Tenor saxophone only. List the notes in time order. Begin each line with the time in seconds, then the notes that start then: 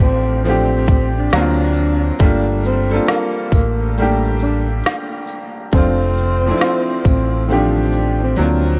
0.02 C4
0.45 C4
1.18 D4
2.23 D4
2.66 C4
3.10 A#3
3.54 A#3
4.42 D4
5.74 C4
7.07 C4
7.51 D4
8.24 C4